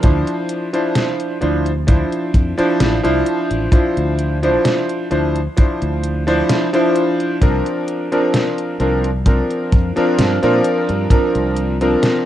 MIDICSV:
0, 0, Header, 1, 5, 480
1, 0, Start_track
1, 0, Key_signature, -1, "minor"
1, 0, Tempo, 923077
1, 18, Time_signature, 4, 2, 24, 8
1, 6373, End_track
2, 0, Start_track
2, 0, Title_t, "Electric grand piano"
2, 0, Program_c, 0, 2
2, 14, Note_on_c, 0, 53, 81
2, 16, Note_on_c, 0, 62, 74
2, 18, Note_on_c, 0, 64, 72
2, 21, Note_on_c, 0, 72, 91
2, 352, Note_off_c, 0, 53, 0
2, 353, Note_off_c, 0, 62, 0
2, 355, Note_off_c, 0, 64, 0
2, 356, Note_off_c, 0, 72, 0
2, 381, Note_on_c, 0, 53, 81
2, 383, Note_on_c, 0, 62, 75
2, 385, Note_on_c, 0, 64, 74
2, 387, Note_on_c, 0, 72, 90
2, 709, Note_off_c, 0, 53, 0
2, 710, Note_off_c, 0, 62, 0
2, 711, Note_off_c, 0, 64, 0
2, 712, Note_off_c, 0, 72, 0
2, 733, Note_on_c, 0, 53, 76
2, 736, Note_on_c, 0, 62, 70
2, 739, Note_on_c, 0, 64, 69
2, 741, Note_on_c, 0, 72, 83
2, 878, Note_off_c, 0, 53, 0
2, 880, Note_off_c, 0, 62, 0
2, 881, Note_off_c, 0, 64, 0
2, 882, Note_off_c, 0, 72, 0
2, 972, Note_on_c, 0, 53, 72
2, 975, Note_on_c, 0, 62, 67
2, 978, Note_on_c, 0, 64, 69
2, 980, Note_on_c, 0, 72, 80
2, 1312, Note_off_c, 0, 53, 0
2, 1313, Note_off_c, 0, 62, 0
2, 1314, Note_off_c, 0, 64, 0
2, 1315, Note_off_c, 0, 72, 0
2, 1339, Note_on_c, 0, 53, 96
2, 1341, Note_on_c, 0, 62, 87
2, 1344, Note_on_c, 0, 64, 86
2, 1346, Note_on_c, 0, 72, 106
2, 1552, Note_off_c, 0, 53, 0
2, 1552, Note_off_c, 0, 62, 0
2, 1554, Note_off_c, 0, 64, 0
2, 1555, Note_off_c, 0, 72, 0
2, 1578, Note_on_c, 0, 53, 93
2, 1580, Note_on_c, 0, 62, 85
2, 1582, Note_on_c, 0, 64, 85
2, 1584, Note_on_c, 0, 72, 104
2, 1907, Note_off_c, 0, 53, 0
2, 1909, Note_off_c, 0, 62, 0
2, 1910, Note_off_c, 0, 64, 0
2, 1911, Note_off_c, 0, 72, 0
2, 1932, Note_on_c, 0, 53, 82
2, 1935, Note_on_c, 0, 62, 75
2, 1937, Note_on_c, 0, 64, 73
2, 1940, Note_on_c, 0, 72, 89
2, 2272, Note_off_c, 0, 53, 0
2, 2273, Note_off_c, 0, 62, 0
2, 2274, Note_off_c, 0, 64, 0
2, 2276, Note_off_c, 0, 72, 0
2, 2301, Note_on_c, 0, 53, 81
2, 2303, Note_on_c, 0, 62, 72
2, 2306, Note_on_c, 0, 64, 73
2, 2309, Note_on_c, 0, 72, 92
2, 2629, Note_off_c, 0, 53, 0
2, 2630, Note_off_c, 0, 62, 0
2, 2632, Note_off_c, 0, 64, 0
2, 2633, Note_off_c, 0, 72, 0
2, 2654, Note_on_c, 0, 53, 75
2, 2655, Note_on_c, 0, 62, 69
2, 2659, Note_on_c, 0, 64, 67
2, 2662, Note_on_c, 0, 72, 82
2, 2799, Note_off_c, 0, 53, 0
2, 2799, Note_off_c, 0, 62, 0
2, 2801, Note_off_c, 0, 64, 0
2, 2803, Note_off_c, 0, 72, 0
2, 2894, Note_on_c, 0, 53, 70
2, 2895, Note_on_c, 0, 62, 66
2, 2898, Note_on_c, 0, 64, 65
2, 2901, Note_on_c, 0, 72, 82
2, 3232, Note_off_c, 0, 53, 0
2, 3233, Note_off_c, 0, 62, 0
2, 3235, Note_off_c, 0, 64, 0
2, 3236, Note_off_c, 0, 72, 0
2, 3259, Note_on_c, 0, 53, 95
2, 3262, Note_on_c, 0, 62, 88
2, 3265, Note_on_c, 0, 64, 86
2, 3267, Note_on_c, 0, 72, 106
2, 3472, Note_off_c, 0, 53, 0
2, 3473, Note_off_c, 0, 62, 0
2, 3474, Note_off_c, 0, 64, 0
2, 3476, Note_off_c, 0, 72, 0
2, 3500, Note_on_c, 0, 53, 96
2, 3504, Note_on_c, 0, 62, 87
2, 3506, Note_on_c, 0, 64, 84
2, 3508, Note_on_c, 0, 72, 104
2, 3829, Note_off_c, 0, 53, 0
2, 3830, Note_off_c, 0, 62, 0
2, 3832, Note_off_c, 0, 64, 0
2, 3833, Note_off_c, 0, 72, 0
2, 3854, Note_on_c, 0, 53, 80
2, 3857, Note_on_c, 0, 60, 74
2, 3860, Note_on_c, 0, 62, 73
2, 3862, Note_on_c, 0, 70, 88
2, 4193, Note_off_c, 0, 53, 0
2, 4194, Note_off_c, 0, 60, 0
2, 4196, Note_off_c, 0, 62, 0
2, 4197, Note_off_c, 0, 70, 0
2, 4221, Note_on_c, 0, 53, 81
2, 4223, Note_on_c, 0, 60, 74
2, 4226, Note_on_c, 0, 62, 75
2, 4228, Note_on_c, 0, 70, 92
2, 4549, Note_off_c, 0, 53, 0
2, 4550, Note_off_c, 0, 60, 0
2, 4551, Note_off_c, 0, 62, 0
2, 4552, Note_off_c, 0, 70, 0
2, 4575, Note_on_c, 0, 53, 76
2, 4577, Note_on_c, 0, 60, 68
2, 4580, Note_on_c, 0, 62, 69
2, 4583, Note_on_c, 0, 70, 84
2, 4719, Note_off_c, 0, 53, 0
2, 4720, Note_off_c, 0, 60, 0
2, 4722, Note_off_c, 0, 62, 0
2, 4723, Note_off_c, 0, 70, 0
2, 4814, Note_on_c, 0, 53, 72
2, 4816, Note_on_c, 0, 60, 65
2, 4820, Note_on_c, 0, 62, 66
2, 4822, Note_on_c, 0, 70, 80
2, 5152, Note_off_c, 0, 53, 0
2, 5153, Note_off_c, 0, 60, 0
2, 5155, Note_off_c, 0, 62, 0
2, 5156, Note_off_c, 0, 70, 0
2, 5179, Note_on_c, 0, 53, 94
2, 5182, Note_on_c, 0, 60, 88
2, 5184, Note_on_c, 0, 62, 85
2, 5187, Note_on_c, 0, 70, 102
2, 5391, Note_off_c, 0, 53, 0
2, 5393, Note_off_c, 0, 60, 0
2, 5394, Note_off_c, 0, 62, 0
2, 5395, Note_off_c, 0, 70, 0
2, 5420, Note_on_c, 0, 53, 93
2, 5423, Note_on_c, 0, 60, 85
2, 5426, Note_on_c, 0, 62, 86
2, 5428, Note_on_c, 0, 70, 106
2, 5749, Note_off_c, 0, 53, 0
2, 5750, Note_off_c, 0, 60, 0
2, 5752, Note_off_c, 0, 62, 0
2, 5753, Note_off_c, 0, 70, 0
2, 5772, Note_on_c, 0, 53, 84
2, 5775, Note_on_c, 0, 60, 73
2, 5778, Note_on_c, 0, 62, 75
2, 5780, Note_on_c, 0, 70, 92
2, 6112, Note_off_c, 0, 53, 0
2, 6113, Note_off_c, 0, 60, 0
2, 6114, Note_off_c, 0, 62, 0
2, 6115, Note_off_c, 0, 70, 0
2, 6141, Note_on_c, 0, 53, 83
2, 6144, Note_on_c, 0, 60, 75
2, 6146, Note_on_c, 0, 62, 75
2, 6149, Note_on_c, 0, 70, 92
2, 6373, Note_off_c, 0, 53, 0
2, 6373, Note_off_c, 0, 60, 0
2, 6373, Note_off_c, 0, 62, 0
2, 6373, Note_off_c, 0, 70, 0
2, 6373, End_track
3, 0, Start_track
3, 0, Title_t, "Fretless electric bass"
3, 0, Program_c, 1, 35
3, 20, Note_on_c, 1, 38, 88
3, 112, Note_off_c, 1, 38, 0
3, 739, Note_on_c, 1, 38, 88
3, 1052, Note_off_c, 1, 38, 0
3, 1218, Note_on_c, 1, 41, 76
3, 1311, Note_off_c, 1, 41, 0
3, 1457, Note_on_c, 1, 33, 95
3, 1551, Note_off_c, 1, 33, 0
3, 1582, Note_on_c, 1, 36, 98
3, 1667, Note_off_c, 1, 36, 0
3, 1822, Note_on_c, 1, 33, 75
3, 1907, Note_off_c, 1, 33, 0
3, 2063, Note_on_c, 1, 38, 81
3, 2370, Note_off_c, 1, 38, 0
3, 2658, Note_on_c, 1, 38, 84
3, 2839, Note_off_c, 1, 38, 0
3, 3025, Note_on_c, 1, 38, 89
3, 3331, Note_off_c, 1, 38, 0
3, 3857, Note_on_c, 1, 36, 91
3, 3951, Note_off_c, 1, 36, 0
3, 4575, Note_on_c, 1, 36, 89
3, 4890, Note_off_c, 1, 36, 0
3, 5056, Note_on_c, 1, 41, 79
3, 5151, Note_off_c, 1, 41, 0
3, 5297, Note_on_c, 1, 43, 93
3, 5391, Note_off_c, 1, 43, 0
3, 5423, Note_on_c, 1, 46, 100
3, 5507, Note_off_c, 1, 46, 0
3, 5663, Note_on_c, 1, 43, 81
3, 5748, Note_off_c, 1, 43, 0
3, 5903, Note_on_c, 1, 36, 79
3, 6209, Note_off_c, 1, 36, 0
3, 6373, End_track
4, 0, Start_track
4, 0, Title_t, "Muted fretless electric bass strokes"
4, 1344, Note_on_c, 9, 29, 43
4, 1396, Note_off_c, 9, 29, 0
4, 5184, Note_on_c, 9, 29, 43
4, 5236, Note_off_c, 9, 29, 0
4, 6373, End_track
5, 0, Start_track
5, 0, Title_t, "Drums"
5, 15, Note_on_c, 9, 42, 92
5, 20, Note_on_c, 9, 36, 120
5, 67, Note_off_c, 9, 42, 0
5, 72, Note_off_c, 9, 36, 0
5, 142, Note_on_c, 9, 42, 40
5, 194, Note_off_c, 9, 42, 0
5, 256, Note_on_c, 9, 42, 65
5, 308, Note_off_c, 9, 42, 0
5, 383, Note_on_c, 9, 42, 40
5, 435, Note_off_c, 9, 42, 0
5, 496, Note_on_c, 9, 38, 121
5, 496, Note_on_c, 9, 42, 93
5, 548, Note_off_c, 9, 38, 0
5, 548, Note_off_c, 9, 42, 0
5, 623, Note_on_c, 9, 42, 39
5, 675, Note_off_c, 9, 42, 0
5, 737, Note_on_c, 9, 42, 39
5, 789, Note_off_c, 9, 42, 0
5, 864, Note_on_c, 9, 42, 40
5, 916, Note_off_c, 9, 42, 0
5, 977, Note_on_c, 9, 42, 91
5, 980, Note_on_c, 9, 36, 116
5, 1029, Note_off_c, 9, 42, 0
5, 1032, Note_off_c, 9, 36, 0
5, 1105, Note_on_c, 9, 42, 39
5, 1157, Note_off_c, 9, 42, 0
5, 1218, Note_on_c, 9, 36, 107
5, 1219, Note_on_c, 9, 42, 67
5, 1270, Note_off_c, 9, 36, 0
5, 1271, Note_off_c, 9, 42, 0
5, 1345, Note_on_c, 9, 42, 40
5, 1397, Note_off_c, 9, 42, 0
5, 1458, Note_on_c, 9, 38, 122
5, 1458, Note_on_c, 9, 42, 91
5, 1510, Note_off_c, 9, 38, 0
5, 1510, Note_off_c, 9, 42, 0
5, 1584, Note_on_c, 9, 42, 39
5, 1636, Note_off_c, 9, 42, 0
5, 1697, Note_on_c, 9, 42, 63
5, 1749, Note_off_c, 9, 42, 0
5, 1824, Note_on_c, 9, 42, 41
5, 1876, Note_off_c, 9, 42, 0
5, 1934, Note_on_c, 9, 36, 122
5, 1937, Note_on_c, 9, 42, 89
5, 1986, Note_off_c, 9, 36, 0
5, 1989, Note_off_c, 9, 42, 0
5, 2065, Note_on_c, 9, 42, 39
5, 2117, Note_off_c, 9, 42, 0
5, 2177, Note_on_c, 9, 42, 63
5, 2229, Note_off_c, 9, 42, 0
5, 2304, Note_on_c, 9, 42, 38
5, 2356, Note_off_c, 9, 42, 0
5, 2417, Note_on_c, 9, 38, 119
5, 2417, Note_on_c, 9, 42, 88
5, 2469, Note_off_c, 9, 38, 0
5, 2469, Note_off_c, 9, 42, 0
5, 2544, Note_on_c, 9, 42, 39
5, 2596, Note_off_c, 9, 42, 0
5, 2657, Note_on_c, 9, 42, 36
5, 2709, Note_off_c, 9, 42, 0
5, 2785, Note_on_c, 9, 42, 40
5, 2837, Note_off_c, 9, 42, 0
5, 2899, Note_on_c, 9, 42, 87
5, 2902, Note_on_c, 9, 36, 108
5, 2951, Note_off_c, 9, 42, 0
5, 2954, Note_off_c, 9, 36, 0
5, 3025, Note_on_c, 9, 42, 38
5, 3077, Note_off_c, 9, 42, 0
5, 3138, Note_on_c, 9, 42, 64
5, 3190, Note_off_c, 9, 42, 0
5, 3264, Note_on_c, 9, 42, 38
5, 3316, Note_off_c, 9, 42, 0
5, 3377, Note_on_c, 9, 38, 117
5, 3377, Note_on_c, 9, 42, 92
5, 3429, Note_off_c, 9, 38, 0
5, 3429, Note_off_c, 9, 42, 0
5, 3503, Note_on_c, 9, 42, 38
5, 3555, Note_off_c, 9, 42, 0
5, 3618, Note_on_c, 9, 42, 60
5, 3670, Note_off_c, 9, 42, 0
5, 3745, Note_on_c, 9, 42, 37
5, 3797, Note_off_c, 9, 42, 0
5, 3857, Note_on_c, 9, 36, 108
5, 3857, Note_on_c, 9, 42, 87
5, 3909, Note_off_c, 9, 36, 0
5, 3909, Note_off_c, 9, 42, 0
5, 3984, Note_on_c, 9, 42, 38
5, 4036, Note_off_c, 9, 42, 0
5, 4097, Note_on_c, 9, 42, 59
5, 4149, Note_off_c, 9, 42, 0
5, 4224, Note_on_c, 9, 42, 37
5, 4276, Note_off_c, 9, 42, 0
5, 4336, Note_on_c, 9, 38, 113
5, 4336, Note_on_c, 9, 42, 85
5, 4388, Note_off_c, 9, 38, 0
5, 4388, Note_off_c, 9, 42, 0
5, 4463, Note_on_c, 9, 42, 37
5, 4515, Note_off_c, 9, 42, 0
5, 4576, Note_on_c, 9, 42, 36
5, 4628, Note_off_c, 9, 42, 0
5, 4702, Note_on_c, 9, 42, 36
5, 4754, Note_off_c, 9, 42, 0
5, 4815, Note_on_c, 9, 36, 104
5, 4815, Note_on_c, 9, 42, 85
5, 4867, Note_off_c, 9, 36, 0
5, 4867, Note_off_c, 9, 42, 0
5, 4943, Note_on_c, 9, 42, 37
5, 4995, Note_off_c, 9, 42, 0
5, 5056, Note_on_c, 9, 36, 107
5, 5056, Note_on_c, 9, 42, 63
5, 5108, Note_off_c, 9, 36, 0
5, 5108, Note_off_c, 9, 42, 0
5, 5182, Note_on_c, 9, 42, 37
5, 5234, Note_off_c, 9, 42, 0
5, 5297, Note_on_c, 9, 38, 117
5, 5297, Note_on_c, 9, 42, 88
5, 5349, Note_off_c, 9, 38, 0
5, 5349, Note_off_c, 9, 42, 0
5, 5423, Note_on_c, 9, 42, 38
5, 5475, Note_off_c, 9, 42, 0
5, 5535, Note_on_c, 9, 42, 60
5, 5587, Note_off_c, 9, 42, 0
5, 5662, Note_on_c, 9, 42, 38
5, 5714, Note_off_c, 9, 42, 0
5, 5774, Note_on_c, 9, 36, 109
5, 5776, Note_on_c, 9, 42, 88
5, 5826, Note_off_c, 9, 36, 0
5, 5828, Note_off_c, 9, 42, 0
5, 5903, Note_on_c, 9, 42, 37
5, 5955, Note_off_c, 9, 42, 0
5, 6014, Note_on_c, 9, 42, 62
5, 6066, Note_off_c, 9, 42, 0
5, 6142, Note_on_c, 9, 42, 37
5, 6194, Note_off_c, 9, 42, 0
5, 6255, Note_on_c, 9, 38, 110
5, 6255, Note_on_c, 9, 42, 85
5, 6307, Note_off_c, 9, 38, 0
5, 6307, Note_off_c, 9, 42, 0
5, 6373, End_track
0, 0, End_of_file